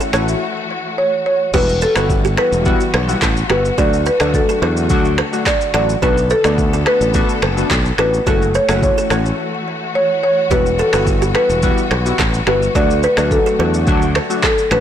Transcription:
Already playing: E3 A3 C#4 E4 F#4 E5
0.01 A4, shaker
0.13 A1 A3 C#4 E4 F#4 C#5, finger snap, cross-stick, shaker
0.28 shaker
0.98 C#5
1.26 C#5
1.54 E1 E3 G3 B3 E4 F#4 G4 B4, kick, crash, shaker
1.69 shaker
1.81 A4, shaker
1.96 G1 G3 B3 E4 F#4 B4, finger snap, cross-stick, shaker
2.10 kick, shaker
2.25 G4, shaker
2.37 G3 B3 E4 F#4 B4, finger snap, cross-stick
2.52 E1, shaker
2.65 G3 B3 E4 F#4, kick, shaker
2.80 shaker
2.94 B1 B4, finger snap, cross-stick
3.08 G3 B3 E4 F#4, shaker
3.22 A1 A4, kick, clap, shaker
3.37 shaker
3.50 G1 G3 B3 E4 F#4 G4 B4, finger snap, cross-stick
3.65 shaker
3.78 D2 D3 F#3 A3 D4 F#4 A4 D5, kick, shaker
3.93 shaker
4.06 B4, shaker
4.20 D2 F#3 A3 D4 F#4 D5, finger snap, cross-stick, shaker
4.34 A4, kick, shaker
4.49 A4, shaker
4.62 E2 F#3 A3 D4 F#4 B4
4.77 shaker
4.90 D2 F#3 A3 D4 F#4, kick, shaker
5.05 shaker
5.18 B4, finger snap, cross-stick
5.32 F#3 A3 D4 F#4, shaker
5.46 A4 D5, finger snap, kick, cross-stick, clap, shaker
5.61 shaker
5.74 A1 F#3 A3 D4 F#4 A4 D5, finger snap, cross-stick
5.89 shaker
6.02 B1 D3 A3 B3 D4 F#4 A4 B4, kick, shaker
6.18 shaker
6.30 A4 B4, shaker
6.44 D2 A3 B3 D4 F#4 D5, finger snap, cross-stick, shaker
6.58 kick, shaker
6.73 A4, shaker
6.86 A3 B3 D4 F#4 B4, finger snap, cross-stick
7.01 A1, shaker
7.14 A3 B3 D4 F#4, kick, shaker
7.29 shaker
7.42 F#1 B4, finger snap, cross-stick
7.57 A3 B3 D4 F#4, shaker
7.70 B1 A4, kick, clap, shaker
7.85 shaker
7.98 A1 A3 B3 D4 F#4 A4 B4, finger snap, cross-stick
8.14 shaker
8.26 F#1 E3 A3 C#4 E4 F#4 A4, kick, shaker
8.42 shaker
8.54 B4 C#5, shaker
8.69 F#1 A3 C#4 E4 F#4 C#5, finger snap, cross-stick, shaker
8.82 C#5, kick, shaker
8.98 A4, shaker
9.10 A1 A3 C#4 E4 F#4 C#5, finger snap, cross-stick, shaker
9.26 shaker
9.95 C#5
10.24 C#5
10.51 E1 G3 B3 E4 F#4 G4 B4, kick, shaker
10.66 shaker
10.79 A4, shaker
10.93 G1 G3 B3 E4 F#4 B4, finger snap, cross-stick, shaker
11.07 kick, shaker
11.22 G4, shaker
11.35 G3 B3 E4 F#4 B4, finger snap, cross-stick
11.50 E1, shaker
11.63 G3 B3 E4 F#4, kick, shaker
11.78 shaker
11.91 B1 B4, finger snap, cross-stick
12.05 G3 B3 E4 F#4, shaker
12.19 A1 A4, kick, clap, shaker
12.34 shaker
12.47 G1 G3 B3 E4 F#4 G4 B4, finger snap, cross-stick
12.62 shaker
12.75 D2 D3 F#3 A3 D4 F#4 A4 D5, kick, shaker
12.90 shaker
13.03 B4, shaker
13.17 D2 F#3 A3 D4 F#4 D5, finger snap, cross-stick, shaker
13.31 A4, kick, shaker
13.46 A4, shaker
13.59 E2 F#3 A3 D4 F#4 B4
13.74 shaker
13.87 D2 F#3 A3 D4 F#4, kick, shaker
14.02 shaker
14.15 B4, finger snap, cross-stick
14.30 F#3 A3 D4 F#4, shaker
14.43 A4, finger snap, kick, cross-stick, clap, shaker
14.58 shaker
14.71 A1 F#3 A3 D4 F#4 A4 B4, finger snap, cross-stick

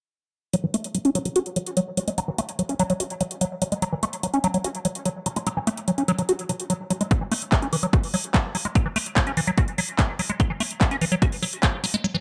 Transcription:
0.53 F#3, closed hi-hat
0.64 E3
0.74 A3, closed hi-hat
0.84 closed hi-hat
0.95 F#3, closed hi-hat
1.05 C#4, closed hi-hat
1.15 F#3, closed hi-hat
1.25 F#3, closed hi-hat
1.36 F#4, closed hi-hat
1.46 closed hi-hat
1.56 F#3, closed hi-hat
1.67 closed hi-hat
1.77 F#3, closed hi-hat
1.97 F#3, closed hi-hat
2.08 G#3, closed hi-hat
2.18 F#3, closed hi-hat
2.28 E3
2.38 A3, closed hi-hat
2.49 closed hi-hat
2.59 F#3, closed hi-hat
2.69 C#4, closed hi-hat
2.79 F#3, closed hi-hat
2.90 F#3, closed hi-hat
3.00 F#4, closed hi-hat
3.10 closed hi-hat
3.21 F#3, closed hi-hat
3.31 closed hi-hat
3.41 F#3, closed hi-hat
3.62 F#3, closed hi-hat
3.72 G#3, closed hi-hat
3.82 F#3, closed hi-hat
3.93 E3
4.03 A3, closed hi-hat
4.13 closed hi-hat
4.23 F#3, closed hi-hat
4.34 C#4, closed hi-hat
4.44 F#3, closed hi-hat
4.54 F#3, closed hi-hat
4.64 F#4, closed hi-hat
4.75 closed hi-hat
4.85 F#3, closed hi-hat
4.95 closed hi-hat
5.05 F#3, closed hi-hat
5.26 F#3, closed hi-hat
5.36 G#3, closed hi-hat
5.47 F#3, closed hi-hat
5.57 E3
5.67 A3, closed hi-hat
5.77 closed hi-hat
5.88 F#3, closed hi-hat
5.98 C#4, closed hi-hat
6.08 F#3, closed hi-hat
6.18 F#3, closed hi-hat
6.29 F#4, closed hi-hat
6.39 closed hi-hat
6.49 F#3, closed hi-hat
6.60 closed hi-hat
6.70 F#3, closed hi-hat
6.90 F#3, closed hi-hat
7.01 G#3, closed hi-hat
7.11 F#3, kick, closed hi-hat
7.21 E3
7.32 A3, open hi-hat
7.42 closed hi-hat
7.52 F#3, kick, clap, closed hi-hat
7.62 C#4, closed hi-hat
7.73 E3, open hi-hat
7.83 F#3, closed hi-hat
7.93 F#4, kick, closed hi-hat
8.03 open hi-hat
8.14 F#3, open hi-hat
8.24 closed hi-hat
8.34 F#3, kick, clap, closed hi-hat
8.55 F#3, open hi-hat
8.65 G#3, closed hi-hat
8.75 F#3, kick, closed hi-hat
8.86 E3
8.96 A3, open hi-hat
9.06 closed hi-hat
9.16 F#3, kick, clap, closed hi-hat
9.27 C#4, closed hi-hat
9.37 E3, open hi-hat
9.47 F#3, closed hi-hat
9.58 F#4, kick, closed hi-hat
9.68 closed hi-hat
9.78 F#3, open hi-hat
9.88 closed hi-hat
9.99 F#3, kick, clap, closed hi-hat
10.19 F#3, open hi-hat
10.29 G#3, closed hi-hat
10.40 F#3, kick, closed hi-hat
10.50 E3
10.60 A3, open hi-hat
10.71 closed hi-hat
10.81 F#3, kick, clap, closed hi-hat
10.91 C#4, closed hi-hat
11.01 E3, open hi-hat
11.12 F#3, closed hi-hat
11.22 F#4, kick, closed hi-hat
11.32 open hi-hat
11.42 F#3, open hi-hat
11.53 closed hi-hat
11.63 F#3, kick, clap, closed hi-hat
11.84 F#3, open hi-hat
11.94 G#3, closed hi-hat
12.04 F#3
12.14 E3

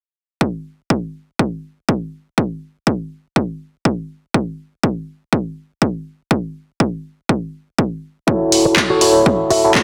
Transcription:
0.41 kick
0.90 kick
1.39 kick
1.89 kick
2.38 kick
2.87 kick
3.36 kick
3.85 kick
4.34 kick
4.83 kick
5.33 kick
5.82 kick
6.31 kick
6.80 kick
7.29 kick
7.78 kick
8.27 E4 F#4 A4 C#5, kick
8.52 open hi-hat
8.65 muted clean electric guitar stroke
8.76 muted clean electric guitar stroke, kick, clap
8.90 F#4 A4 C#5
9.01 E4 F#4 A4 C#5, open hi-hat
9.26 kick
9.50 F#4 A4 E5, open hi-hat
9.64 E4 F#4 A4 C#5
9.75 kick, clap

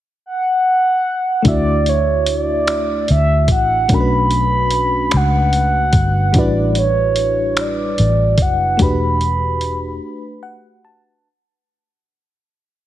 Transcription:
0.26 F#5
1.42 D2 A3 D4 E4, kick, closed hi-hat
1.47 F#4 D5 E5
1.86 C#5, closed hi-hat
2.26 D5, closed hi-hat
2.67 finger snap, closed hi-hat
3.08 D2 E5, closed hi-hat
3.48 A1 F#5, kick, closed hi-hat
3.88 B1 A3 C#4 D4, kick, closed hi-hat
3.92 F#4 A#4 B5
4.00 B4
4.31 closed hi-hat
4.71 closed hi-hat
5.11 C#2, finger snap, closed hi-hat
5.17 F#5
5.53 closed hi-hat
5.93 G1, kick, closed hi-hat
6.33 A1 G3 C#4 E4, kick, closed hi-hat
6.37 D4 F#4 B4 D5
6.75 C#5, closed hi-hat
7.16 closed hi-hat
7.57 finger snap, closed hi-hat
7.61 D5
7.98 A1, closed hi-hat
8.38 F#1, kick, closed hi-hat
8.42 F#5
8.77 E1 A3 D4 F#4, kick, closed hi-hat
8.82 G4 B4 B5
9.21 closed hi-hat
9.61 closed hi-hat
10.43 F#5
10.85 A5

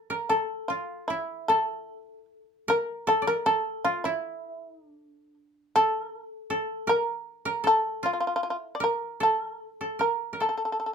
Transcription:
Already playing: A#4
0.10 A#4
0.29 A4
0.68 F4
1.08 E4
1.48 A4
2.68 A#4
3.07 A4
3.22 D5
3.27 A#4
3.46 A4
3.85 F4
4.04 E4
4.71 D#4
4.87 D4
5.76 A4
6.50 A4
6.87 A#4
7.45 A#4
7.64 A4
8.03 F4
8.13 F4
8.20 F4
8.27 F4
8.35 E4 F4
8.43 F4
8.50 F4
8.75 D5
8.80 A#4
9.20 A4
9.81 A4
9.99 A#4
10.33 A#4
10.40 A4
10.49 A4
10.57 A4
10.65 A4
10.72 A4
10.80 A4
10.86 A4

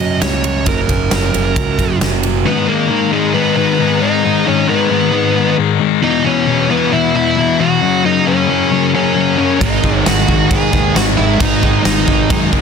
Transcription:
Already playing: F#2 C#3 F#3 A#3 F#4 D#5
0.00 F#2 C#4
0.21 C#2 A#3 C#5, snare, ride
0.44 F#3 C#5, ride
0.66 F#1 F#2 C#3 F#3 A#4, kick, ride
0.89 F#1 C#3, kick, ride
1.11 F#1 F#3, snare, ride
1.34 F#1 A#3, ride
1.56 C#2 F#4, kick, ride
1.78 F#2 C#4, kick, ride
2.01 F#1 A#3, snare, ride
2.23 F#3, ride
2.45 G#2 D#3 G#3 B3 G#4 B4 A#5
2.67 G#2 D#3 G#3 A#3 A#4
2.89 G#2 D#3 G#3
3.12 G#2 D#3 G#3 G#4
3.34 G#2 D#3 G#3 B3 B4
3.56 G#2 D#3 G#3 B3 B4
3.79 G#2 D#3 G#3
4.01 G#2 D#3 G#3 D#4 D#5
4.24 G#2 D#3 G#3
4.46 G#2 D#3 G#3 C#4 C#5
4.68 G#2 D#3 G#3 B3 B4
4.90 G#2 D#3 G#3
5.12 G#2 D#3 G#3
5.35 G#2 D#3 G#3
5.57 G#2 D#3 G#3
5.80 G#2 D#3 G#3
6.03 E2 B2 E3 D#4 E4 F#4 D#5
6.24 E2 B2 E3 C#4 C#5
6.47 E2 B2 E3
6.69 E2 B2 E3 B3 B4
6.92 E2 B2 E3 E4 E5
7.14 E2 B2 E3 E4 E5
7.37 E2 B2 E3
7.59 E2 B2 E3 F#4 F#5
7.81 F#2 C#3 F#3 C#4 G#4 A#4
8.04 F#2 C#3 F#3 D#4 D#5
8.26 F#2 C#3 F#3 C#4 C#5
8.48 F#2 C#3 F#3
8.71 F#2 C#3 F#3
8.94 F#2 C#3 F#3 C#4 C#5
9.16 F#2 C#3 F#3
9.38 F#2 C#3 F#3
9.61 G#1 G#2 D#3 G#3 D#4 B4 D#5, kick, crash
9.83 G#1 G#2 D#3 G#3, kick
10.05 G#1 G#2 D#3 G#3 F#4 F#5, snare, crash
10.18 snare
10.28 G#1 G#2 D#3 G#3, kick
10.49 G#2 D#3 G#3 G#4 G#5, kick, crash
10.72 D#2 G#2 D#3 G#3, kick
10.94 G#1 G#2 D#3 G#3 F#4 F#5, snare, crash
11.17 G#1 G#2 D#3 G#3 E4 E5
11.39 G#1 G#2 D#3 G#3 D#4 G#4 D#5, kick, crash
11.62 G#2 D#3 G#3, kick
11.84 G#1 G#2 D#3 G#3 D#4 D#5, snare, crash
12.08 G#1 G#2 D#3 G#3, kick
12.30 F#2 G#2 D#3 G#3, kick, crash
12.52 G#1 G#2 D#3 G#3, kick

